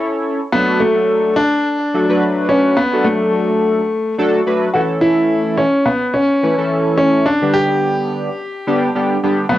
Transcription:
Already playing: analog polysynth C#4 E4 A4 C#5
0.52 analog polysynth F#3 A3 D4 F#4 A4, grand piano B3
0.80 grand piano A3
1.36 grand piano D4
1.94 analog polysynth F#3 A3 D4 F#4 A4
2.09 analog polysynth F#3 A3 D4 F#4 B4
2.49 grand piano C#4
2.77 grand piano B3
2.93 analog polysynth F#3 A3 D4 F#4 A4
3.04 grand piano A3
4.18 analog polysynth F#3 A3 D4 F#4 A4
4.46 analog polysynth F#3 A3 D4 F#4 B4
4.73 analog polysynth E3 A3 C#4 E4 A4, grand piano F#4
5.01 grand piano E4
5.57 grand piano C#4
5.86 grand piano B3
6.14 grand piano C#4
6.43 analog polysynth E3 A3 C#4 E4 B4
6.58 analog polysynth E3 A3 C#4 E4 A4
6.98 grand piano C#4
7.26 grand piano D4
7.42 analog polysynth D3 G3 B3 D4 G4
7.54 grand piano G4
8.67 analog polysynth D3 G3 B3 D4 G4
8.95 analog polysynth D3 G3 B3 D4 G4
9.23 analog polysynth D3 G3 B3 D4 G4
9.49 analog polysynth D3 F#3 A3 D4 F#4, grand piano B3

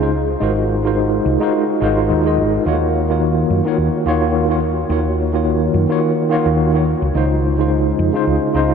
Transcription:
Already playing: fingered electric bass C#2
0.01 tine electric piano G#3 D#4 F4 C5
0.40 fingered electric bass G#1, tine electric piano G#3 D#4 F4 F#4 A#4 C5
0.84 tine electric piano G#3 D#4 F4 F#4 A#4 C5
1.26 fingered electric bass C2
1.40 tine electric piano G#3 D#4 F4 F#4 A#4 C5
1.80 fingered electric bass G#1, tine electric piano G#3 D#4 F4 F#4 A#4 C5
2.10 fingered electric bass D#2
2.24 tine electric piano G#3 D#4 F4 F#4 A#4 D#5
2.38 fingered electric bass G#1
2.65 fingered electric bass D#2, tine electric piano D#3 A#3 F4 F#4 C#5
3.09 tine electric piano D#3 A#3 F4 F#4 C#5
3.50 fingered electric bass F#2
3.65 tine electric piano D#3 A#3 F4 F#4 C#5
3.78 fingered electric bass D#2
4.05 fingered electric bass D#2, tine electric piano D#3 A#3 F4 F#4 C#5
4.49 tine electric piano D#3 A#3 F4 F#4 C#5
4.89 fingered electric bass D#2, tine electric piano D#3 A#3 F4 F#4 C#5
5.33 tine electric piano D#3 A#3 F4 F#4 C#5
5.74 fingered electric bass F#2
5.89 tine electric piano D#3 A#3 F4 F#4 C#5
6.29 tine electric piano D#3 A#3 F4 F#4 C#5
6.46 fingered electric bass D#2
6.73 tine electric piano D#3 A#3 F4 F#4 C#5
7.02 fingered electric bass C#2
7.14 fingered electric bass C#2, tine electric piano C#3 G#3 D#4 F4 C5
7.58 tine electric piano C#3 G#3 D#4 F4 C5
7.99 fingered electric bass F2
8.13 tine electric piano C#3 G#3 D#4 F4 C5
8.27 fingered electric bass C#2
8.53 fingered electric bass C#2, tine electric piano C#3 G#3 D#4 F4 C5

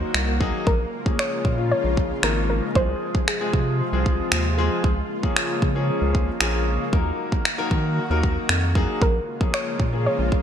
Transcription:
Already playing: supersaw synth D#3 F#3 A#3 F#4, grand piano F#3 A#3 D#4 C5, synth pluck A#4
0.14 analog synth bass C2, finger snap
0.40 grand piano F#3 A#3 D#4 G#4, kick
0.66 analog synth bass A#1, supersaw synth C#3 G#3 F4, synth pluck A#4, kick
1.06 grand piano F3 A#3 C#4 G#4, kick
1.19 synth pluck C#5, finger snap
1.45 analog synth bass A#2, kick
1.58 grand piano F3 A#3 C#4 F4
1.72 synth pluck C#5
1.84 analog synth bass A#1
1.97 kick
2.23 analog synth bass G#1, grand piano F3 A#3 C#4 D#4, synth pluck A#4, finger snap
2.50 synth pluck A#4
2.75 analog synth bass C2, supersaw synth C3 F3 F4, grand piano F3 G#3 C4 G#4, synth pluck C5, kick
3.15 kick
3.28 synth pluck G#4, finger snap
3.41 grand piano F3 G#3 C4 G#4
3.54 analog synth bass C3, kick
3.93 analog synth bass C2, grand piano F3 G#3 C4 G#4
4.06 kick
4.32 analog synth bass D#2, finger snap
4.58 grand piano F3 G#3 C4 G#4
4.83 analog synth bass C#2, supersaw synth C#3 A#3, kick
5.23 grand piano F3 A#3 C#4 G#4, kick
5.37 finger snap
5.62 analog synth bass C#3, kick
5.75 grand piano F3 A#3 C#4 G#4
6.02 analog synth bass C#2
6.15 kick
6.41 analog synth bass A#1, grand piano F3 A#3 C#4 G#4, finger snap
6.93 analog synth bass D#2, supersaw synth D#3 F#4, grand piano F#3 A#3 D#4 A#4, kick
7.32 kick
7.45 finger snap
7.58 grand piano F#3 A#3 D#4 A#4
7.71 analog synth bass D#3, kick
8.10 analog synth bass D#2, grand piano F#3 A#3 D#4 A#4
8.23 kick
8.49 analog synth bass F2, finger snap
8.75 grand piano F#3 A#3 D#4 G#4, kick
9.02 analog synth bass A#1, supersaw synth C#3 G#3 A#3 F4, synth pluck A#4, kick
9.41 grand piano F3 A#3 C#4 G#4, kick
9.54 synth pluck C#5, finger snap
9.80 analog synth bass A#2, kick
9.93 grand piano F3 A#3 C#4 G#4
10.06 synth pluck C#5
10.19 analog synth bass A#1
10.32 kick

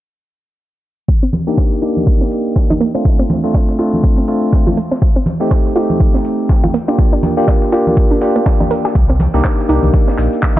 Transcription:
1.08 synth arpeggio sound A#3, kick, ride
1.23 synth arpeggio sound C4
1.33 open hi-hat, ride, high conga
1.47 tine electric piano A#3 D4 D#4 G4, snare
1.58 synth arpeggio sound C5, kick, snare, ride
1.72 snare
1.82 tine electric piano A#3 D4 D#4 G4, synth arpeggio sound D#4, open hi-hat, ride
1.97 high conga
2.07 kick, ride
2.21 synth arpeggio sound C4, snare
2.31 open hi-hat, ride
2.56 kick, snare, ride
2.70 synth arpeggio sound D#4, high conga
2.81 synth arpeggio sound A#3, open hi-hat, ride
2.94 tine electric piano A3 C4 D4 F4, synth arpeggio sound C4, ride
3.05 synth arpeggio sound A3, kick, open hi-hat
3.19 synth arpeggio sound C4
3.30 open hi-hat, ride, high conga
3.44 tine electric piano A3 C4 D4 F4
3.54 synth arpeggio sound D5, kick, snare, ride
3.69 snare
3.79 tine electric piano A3 C4 D4 F4, synth arpeggio sound F4, open hi-hat, ride
3.94 high conga
4.03 kick, ride
4.18 synth arpeggio sound C4
4.28 tine electric piano A3 C4 D4 F4, snare, open hi-hat, ride
4.53 kick, snare, ride
4.67 synth arpeggio sound F4, high conga
4.77 synth arpeggio sound A3, open hi-hat, ride
4.91 synth arpeggio sound C4, snare
5.02 synth arpeggio sound A3, kick, ride
5.16 synth arpeggio sound C4
5.26 open hi-hat, ride, high conga
5.40 tine electric piano A3 C4 D#4 G4, snare
5.51 synth arpeggio sound C5, kick, snare, ride
5.65 snare
5.75 tine electric piano A3 C4 D#4 G4, synth arpeggio sound F4, open hi-hat, ride
5.90 high conga
6.00 kick, ride
6.14 synth arpeggio sound C4, snare
6.25 open hi-hat, ride
6.49 kick, snare, ride
6.64 synth arpeggio sound F4, high conga
6.74 synth arpeggio sound A#3, open hi-hat, ride
6.88 tine electric piano A#3 D4 F4 G4, synth arpeggio sound D4, ride
6.98 synth arpeggio sound A#3, kick, open hi-hat
7.13 synth arpeggio sound D4
7.23 open hi-hat, ride, high conga
7.37 tine electric piano A#3 D4 F4 G4
7.48 synth arpeggio sound D5, kick, snare, ride
7.62 snare
7.72 tine electric piano A#3 D4 F4 G4, synth arpeggio sound F4, open hi-hat, ride
7.87 high conga
7.97 kick, ride
8.11 synth arpeggio sound D4
8.21 tine electric piano A#3 D4 F4 G4, snare, open hi-hat, ride
8.36 synth arpeggio sound A#3
8.46 synth arpeggio sound D4, kick, snare, ride
8.60 synth arpeggio sound D4, high conga
8.71 synth arpeggio sound A#4, open hi-hat, ride
8.85 synth arpeggio sound G4, snare
8.95 sub bass C2, synth arpeggio sound A#3, kick, ride, shaker
9.09 synth arpeggio sound C4, shaker
9.20 open hi-hat, ride, high conga
9.34 sub bass C2, tine electric piano A#3 D4 D#4 G4, snare, shaker
9.44 synth arpeggio sound C5, kick, snare, clap, ride, shaker
9.59 snare, shaker
9.69 sub bass C2, tine electric piano A#3 D4 D#4 G4, synth arpeggio sound D#4, open hi-hat, ride
9.83 sub bass C2, high conga, shaker
9.93 kick, ride, shaker
10.08 synth arpeggio sound C4, snare, shaker
10.18 sub bass A#1, clap, open hi-hat, ride
10.33 shaker
10.43 kick, snare, clap, ride, shaker
10.56 high conga

